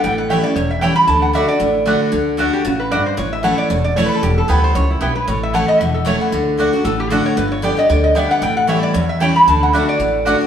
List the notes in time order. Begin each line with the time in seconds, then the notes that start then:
0.04 A1 A2 G5
0.18 F#5
0.29 E3 G3 A3 C#4 E4 C#5 E5 G5
0.43 C#4 E4 D5
0.56 E1 E2 C#5
0.71 E5
0.81 E3 G3 A3 C#4 E4 C#5 G5
0.96 B5
1.07 D2 D3 A5
1.22 F#5
1.33 D3 A3 D4 F#4 D5 E5 F#5
1.48 D4 F#4 D5
1.60 A1 A2
1.86 D3 A3 D4 F#4 D5 F#5
2.12 D2 D3
2.37 D3 A3 D4 F#4 D5 F#5
2.53 G4
2.65 A1 C#3 F#4
2.80 B4
2.91 G2 A3 F#4 D5 F#5
3.06 C5
3.17 A1 A2 C#5
3.33 E5
3.43 E3 A3 C#4 E4 C#5 F#5 A5
3.58 D5
3.70 E1 E2 C#5
3.84 D5
3.96 E3 A3 C#4 E4 C#5 A5
4.06 B4
4.14 A4
4.23 E1 E2 G4
4.38 A4
4.48 D2 E3 G3 B3 E4 B4 G5
4.64 C5
4.75 C#2 F#2 C#5
4.91 E4
5.01 B1 G2 B3 E4 G4 B4 G5
5.15 B4
5.28 A1 A2 C#5
5.43 E5
5.53 E3 A3 C#4 E4 C#5 F#5 A5
5.68 D#5
5.80 E1 E2 E5
5.94 A4
6.05 E3 A3 C#4 E4 C#5 A5
6.21 F#5
6.32 D2 D3
6.57 D3 A3 D4 F#4 D5 F#5
6.73 D4 F#4
6.85 A1 A2 A4
7.00 G4
7.10 D3 A3 D4 F#4 A4 D5 F#5
7.26 C#5
7.37 G1 G2 B4
7.52 C#5
7.62 D3 G3 B3 G4 D5 G5
7.76 B3 G4 D#5
7.89 D2 D3 D5
8.04 D#5
8.15 D3 G3 B3 G4 D5 E5 G5
8.31 F#5
8.41 A1 A2 G5
8.57 F#5
8.67 E3 G3 A3 C#4 E4 C#5 E5 G5
8.83 D5
8.94 E2 C#5
9.09 E5
9.20 E3 G3 A3 C#4 E4 C#5 G5
9.36 B5
9.47 D2 D3 A5
9.63 F#5
9.73 D3 A3 D4 F#4 D5 E5 F#5
9.89 D5
9.99 A1 A2
10.25 D3 A3 D4 F#4 D5 F#5
10.41 D4 F#4